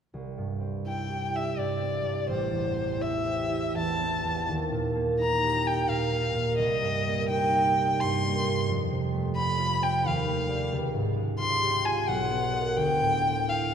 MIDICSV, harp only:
0, 0, Header, 1, 2, 480
1, 0, Start_track
1, 0, Tempo, 716846
1, 88, Time_signature, 3, 2, 24, 8
1, 2006, Tempo, 749064
1, 2966, Tempo, 705053
1, 5366, Tempo, 675676
1, 8246, Tempo, 707547
1, 9378, End_track
2, 0, Start_track
2, 0, Title_t, "Harp"
2, 0, Program_c, 0, 46
2, 91, Note_on_c, 0, 36, 32
2, 252, Note_on_c, 0, 43, 25
2, 402, Note_on_c, 0, 60, 25
2, 571, Note_on_c, 0, 64, 26
2, 734, Note_on_c, 0, 67, 28
2, 884, Note_off_c, 0, 64, 0
2, 892, Note_on_c, 0, 64, 26
2, 1050, Note_off_c, 0, 43, 0
2, 1058, Note_on_c, 0, 43, 24
2, 1207, Note_off_c, 0, 60, 0
2, 1215, Note_on_c, 0, 60, 26
2, 1357, Note_off_c, 0, 43, 0
2, 1365, Note_on_c, 0, 43, 25
2, 1525, Note_on_c, 0, 33, 35
2, 1547, Note_off_c, 0, 43, 0
2, 1552, Note_off_c, 0, 36, 0
2, 1677, Note_on_c, 0, 40, 25
2, 1829, Note_off_c, 0, 60, 0
2, 1837, Note_on_c, 0, 60, 28
2, 1986, Note_off_c, 0, 64, 0
2, 1994, Note_on_c, 0, 64, 28
2, 2145, Note_off_c, 0, 67, 0
2, 2153, Note_on_c, 0, 67, 29
2, 2316, Note_off_c, 0, 64, 0
2, 2324, Note_on_c, 0, 64, 29
2, 2485, Note_off_c, 0, 40, 0
2, 2493, Note_on_c, 0, 40, 27
2, 2642, Note_off_c, 0, 60, 0
2, 2650, Note_on_c, 0, 60, 28
2, 2798, Note_off_c, 0, 40, 0
2, 2806, Note_on_c, 0, 40, 27
2, 2958, Note_on_c, 0, 39, 37
2, 2981, Note_off_c, 0, 40, 0
2, 2981, Note_off_c, 0, 60, 0
2, 2981, Note_off_c, 0, 64, 0
2, 2982, Note_off_c, 0, 33, 0
2, 3115, Note_on_c, 0, 46, 29
2, 3277, Note_on_c, 0, 58, 29
2, 3438, Note_on_c, 0, 63, 31
2, 3595, Note_off_c, 0, 67, 0
2, 3603, Note_on_c, 0, 67, 31
2, 3756, Note_off_c, 0, 63, 0
2, 3764, Note_on_c, 0, 63, 30
2, 3907, Note_off_c, 0, 46, 0
2, 3915, Note_on_c, 0, 46, 28
2, 4060, Note_off_c, 0, 58, 0
2, 4068, Note_on_c, 0, 58, 32
2, 4215, Note_off_c, 0, 46, 0
2, 4223, Note_on_c, 0, 46, 29
2, 4388, Note_on_c, 0, 36, 40
2, 4404, Note_off_c, 0, 39, 0
2, 4404, Note_off_c, 0, 46, 0
2, 4549, Note_on_c, 0, 43, 31
2, 4707, Note_off_c, 0, 58, 0
2, 4715, Note_on_c, 0, 58, 32
2, 4867, Note_off_c, 0, 63, 0
2, 4875, Note_on_c, 0, 63, 34
2, 5032, Note_off_c, 0, 67, 0
2, 5040, Note_on_c, 0, 67, 36
2, 5194, Note_off_c, 0, 63, 0
2, 5203, Note_on_c, 0, 63, 34
2, 5359, Note_off_c, 0, 43, 0
2, 5367, Note_on_c, 0, 43, 33
2, 5526, Note_off_c, 0, 58, 0
2, 5535, Note_on_c, 0, 58, 33
2, 5674, Note_off_c, 0, 43, 0
2, 5682, Note_on_c, 0, 43, 34
2, 5840, Note_on_c, 0, 41, 43
2, 5859, Note_off_c, 0, 43, 0
2, 5860, Note_off_c, 0, 36, 0
2, 5861, Note_off_c, 0, 63, 0
2, 5864, Note_off_c, 0, 58, 0
2, 5864, Note_off_c, 0, 67, 0
2, 6002, Note_on_c, 0, 48, 34
2, 6152, Note_on_c, 0, 57, 36
2, 6321, Note_on_c, 0, 60, 36
2, 6480, Note_on_c, 0, 65, 36
2, 6634, Note_off_c, 0, 60, 0
2, 6642, Note_on_c, 0, 60, 35
2, 6802, Note_on_c, 0, 39, 40
2, 6825, Note_off_c, 0, 60, 0
2, 6825, Note_off_c, 0, 65, 0
2, 6826, Note_off_c, 0, 41, 0
2, 6829, Note_off_c, 0, 48, 0
2, 6955, Note_off_c, 0, 57, 0
2, 6963, Note_on_c, 0, 57, 33
2, 7114, Note_on_c, 0, 67, 32
2, 7119, Note_on_c, 0, 74, 35
2, 7280, Note_on_c, 0, 37, 42
2, 7300, Note_off_c, 0, 74, 0
2, 7301, Note_off_c, 0, 39, 0
2, 7301, Note_off_c, 0, 57, 0
2, 7442, Note_on_c, 0, 44, 35
2, 7597, Note_on_c, 0, 56, 33
2, 7757, Note_on_c, 0, 65, 34
2, 7911, Note_off_c, 0, 67, 0
2, 7920, Note_on_c, 0, 67, 34
2, 8077, Note_off_c, 0, 65, 0
2, 8085, Note_on_c, 0, 65, 34
2, 8249, Note_on_c, 0, 35, 39
2, 8259, Note_off_c, 0, 56, 0
2, 8260, Note_off_c, 0, 37, 0
2, 8260, Note_off_c, 0, 67, 0
2, 8261, Note_off_c, 0, 44, 0
2, 8393, Note_on_c, 0, 59, 33
2, 8550, Note_on_c, 0, 70, 31
2, 8554, Note_on_c, 0, 75, 34
2, 8716, Note_on_c, 0, 38, 41
2, 8732, Note_off_c, 0, 59, 0
2, 8733, Note_off_c, 0, 70, 0
2, 8733, Note_off_c, 0, 75, 0
2, 8738, Note_off_c, 0, 35, 0
2, 8882, Note_on_c, 0, 45, 30
2, 9032, Note_on_c, 0, 60, 31
2, 9203, Note_on_c, 0, 64, 29
2, 9378, Note_off_c, 0, 38, 0
2, 9378, Note_off_c, 0, 45, 0
2, 9378, Note_off_c, 0, 60, 0
2, 9378, Note_off_c, 0, 64, 0
2, 9378, Note_off_c, 0, 65, 0
2, 9378, End_track
0, 0, End_of_file